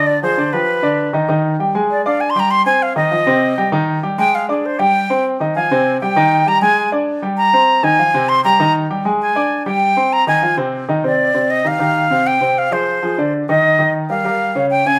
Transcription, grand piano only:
0.00 0.17 D3 medium
0.00 0.17 D4 medium
0.00 0.17 D5 medium
0.22 0.35 F3 medium
0.22 0.35 F4 medium
0.22 0.35 G#4 medium
0.38 0.50 D3 medium
0.38 0.50 D4 medium
0.38 0.50 D5 medium
0.53 0.78 F3 medium
0.53 0.78 F4 medium
0.53 0.78 G4 medium
0.82 1.08 D3 medium
0.82 1.08 D4 medium
0.82 1.08 D5 medium
1.13 1.26 D#3 medium
1.13 1.26 D#4 medium
1.13 1.26 D#5 medium
1.29 1.54 D#3 medium
1.29 1.54 D#4 medium
1.29 1.54 D#5 medium
1.59 1.72 G3 medium
1.59 1.72 G4 medium
1.59 1.72 G5 medium
1.75 2.00 G#3 medium
1.75 2.00 G#4 medium
1.75 2.00 G#5 medium
2.06 2.30 D4 medium
2.06 2.30 D5 medium
2.06 2.31 D6 medium
2.36 2.60 G3 medium
2.36 2.61 G4 medium
2.36 2.61 G5 medium
2.66 2.91 C4 medium
2.66 2.91 C5 medium
2.66 2.91 C6 medium
2.96 3.08 D#3 medium
2.96 3.09 D#4 medium
2.96 3.09 D#5 medium
3.11 3.24 F3 medium
3.11 3.24 F4 medium
3.11 3.24 F5 medium
3.26 3.51 C3 medium
3.26 3.52 C4 loud
3.26 3.52 C5 loud
3.58 3.70 G3 medium
3.58 3.70 G4 medium
3.58 3.70 G5 medium
3.72 3.97 D#3 medium
3.72 3.97 D#4 loud
3.72 3.98 D#5 medium
4.03 4.15 G3 medium
4.03 4.15 G4 medium
4.03 4.16 G5 medium
4.18 4.43 G#3 medium
4.18 4.43 G#4 medium
4.18 4.44 G#5 medium
4.49 4.74 D4 medium
4.49 4.74 D5 medium
4.49 4.74 D6 medium
4.79 5.04 G3 medium
4.79 5.04 G4 medium
4.79 5.04 G5 medium
5.10 5.35 C4 medium
5.10 5.35 C5 medium
5.10 5.35 C6 medium
5.40 5.53 D#3 medium
5.40 5.53 D#4 medium
5.40 5.53 D#5 medium
5.56 5.68 F3 medium
5.56 5.68 F4 medium
5.56 5.68 F5 medium
5.71 5.96 C3 medium
5.71 5.96 C4 loud
5.71 5.96 C5 loud
6.02 6.14 G3 medium
6.02 6.14 G4 medium
6.02 6.14 G5 medium
6.16 6.41 D#3 medium
6.16 6.41 D#4 medium
6.16 6.41 D#5 medium
6.46 6.59 G3 medium
6.46 6.59 G4 medium
6.46 6.59 G5 medium
6.62 6.87 G#3 medium
6.62 6.87 G#4 medium
6.62 6.87 G#5 medium
6.92 7.17 D4 medium
6.92 7.17 D5 medium
6.92 7.17 D6 medium
7.22 7.47 G3 medium
7.22 7.48 G4 medium
7.22 7.48 G5 medium
7.53 7.78 C4 medium
7.53 7.78 C5 medium
7.53 7.79 C6 medium
7.83 7.96 D#3 medium
7.83 7.96 D#4 medium
7.83 7.96 D#5 medium
7.99 8.11 F3 medium
7.99 8.11 F4 medium
7.99 8.12 F5 medium
8.14 8.39 C3 loud
8.14 8.39 C4 medium
8.14 8.39 C5 loud
8.45 8.57 G3 medium
8.45 8.57 G4 medium
8.45 8.57 G5 medium
8.60 8.85 D#3 medium
8.60 8.85 D#4 medium
8.60 8.85 D#5 medium
8.90 9.03 G3 medium
8.90 9.03 G4 medium
8.90 9.03 G5 medium
9.05 9.30 G#3 medium
9.05 9.30 G#4 medium
9.05 9.31 G#5 medium
9.35 9.61 D4 medium
9.35 9.61 D5 medium
9.35 9.61 D6 medium
9.66 9.91 G3 medium
9.66 9.91 G4 medium
9.66 9.91 G5 medium
9.97 10.22 C4 medium
9.97 10.22 C5 medium
9.97 10.22 C6 medium
10.27 10.40 D#3 medium
10.27 10.40 D#4 medium
10.27 10.40 D#5 medium
10.42 10.55 F3 medium
10.42 10.55 F4 medium
10.42 10.55 F5 medium
10.57 10.82 C3 medium
10.57 10.83 C4 medium
10.57 10.83 C5 loud
10.89 11.01 D#3 medium
10.89 11.01 D#4 medium
10.89 11.01 D#5 medium
11.04 11.29 C3 medium
11.04 11.29 C4 medium
11.04 11.29 C5 medium
11.34 11.59 C3 medium
11.34 11.59 C4 medium
11.34 11.59 C5 medium
11.65 11.77 D#3 medium
11.65 11.77 D#4 medium
11.65 11.77 G4 medium
11.79 12.05 D#3 medium
11.79 12.05 D#4 medium
11.79 12.05 G4 medium
12.10 12.36 C3 medium
12.10 12.35 C4 medium
12.10 12.36 C5 medium
12.41 12.66 C3 medium
12.41 12.66 C4 medium
12.41 12.66 C5 medium
12.71 12.96 F3 medium
12.71 12.97 F4 medium
12.71 12.97 G#4 medium
13.03 13.15 F3 medium
13.03 13.15 F4 medium
13.03 13.15 G#4 medium
13.18 13.43 D3 medium
13.18 13.43 D4 medium
13.18 13.43 D5 medium
13.49 13.74 D#3 medium
13.49 13.74 D#4 medium
13.49 13.74 D#5 medium
13.79 14.04 D#3 medium
13.79 14.04 D#4 medium
13.79 14.04 D#5 medium
14.09 14.22 G3 medium
14.09 14.22 G4 medium
14.09 14.22 A#4 medium
14.24 14.49 G3 medium
14.24 14.50 G4 medium
14.24 14.50 A#4 medium
14.55 14.80 C#3 medium
14.55 14.80 C#4 medium
14.55 14.81 C#5 medium
14.86 14.99 C#3 medium
14.86 14.99 C#4 medium
14.86 14.99 C#5 medium

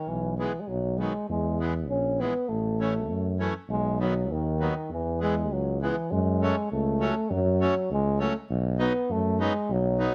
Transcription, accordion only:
0.39 0.52 E3 soft
0.39 0.52 G#3 soft
0.39 0.52 B3 medium
1.00 1.13 D#3 soft
1.00 1.13 F#3 soft
1.00 1.13 B3 medium
1.60 1.74 E3 soft
1.60 1.73 G#3 soft
1.60 1.74 B3 soft
2.20 2.34 E3 soft
2.20 2.34 G#3 soft
2.20 2.34 B3 soft
2.80 2.94 E3 soft
2.80 2.94 A3 soft
2.80 2.94 C#4 medium
3.39 3.54 E3 medium
3.39 3.54 A3 soft
3.39 3.54 C#4 medium
4.00 4.14 D#3 soft
4.00 4.14 F#3 soft
4.00 4.14 B3 medium
4.60 4.74 D#3 soft
4.60 4.74 F#3 soft
4.60 4.74 B3 medium
5.21 5.35 E3 medium
5.21 5.35 G#3 soft
5.21 5.35 B3 medium
5.82 5.96 E3 medium
5.82 5.96 G#3 soft
5.82 5.96 B3 medium
6.41 6.55 F#3 medium
6.41 6.55 A3 soft
6.41 6.56 C#4 medium
7.00 7.14 F#3 medium
7.00 7.15 A3 soft
7.00 7.15 C#4 medium
7.61 7.74 F#3 medium
7.61 7.74 A3 medium
7.61 7.75 C#4 medium
8.20 8.34 F#3 soft
8.20 8.33 A3 medium
8.20 8.34 C#4 medium
8.78 8.93 F#3 medium
8.78 8.93 B3 medium
8.78 8.93 D#4 medium
9.40 9.53 F#3 soft
9.40 9.53 B3 soft
9.40 9.53 D#4 medium
9.99 10.12 F#3 medium
9.99 10.13 B3 soft
9.99 10.13 D#4 medium

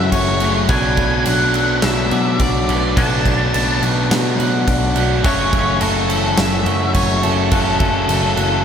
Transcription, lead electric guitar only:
0.00 0.11 E5 loud
0.12 0.52 C#5 loud
0.69 1.25 G#5 loud
1.26 1.85 F#5 medium
1.82 2.40 E5 medium
2.40 2.99 D5 medium
2.97 3.79 A5 medium
5.25 5.83 C#5 loud
5.80 6.34 A4 loud
6.38 6.94 E5 loud
6.95 7.21 C#5 loud
7.23 8.65 A4 medium

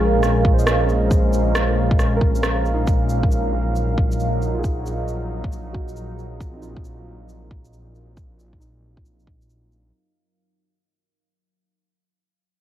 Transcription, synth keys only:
0.00 0.29 C#4 medium
0.00 1.47 G#4 medium
0.53 2.20 C5 medium
0.59 2.23 D#5 medium
2.17 3.06 A#4 medium
2.74 3.07 D#4 medium
4.54 6.21 F4 medium
4.59 6.23 G#4 soft
5.73 7.42 F#4 medium
6.52 8.18 C4 medium
6.57 8.21 D#4 soft
6.62 8.24 F4 medium
8.60 10.12 D#4 medium

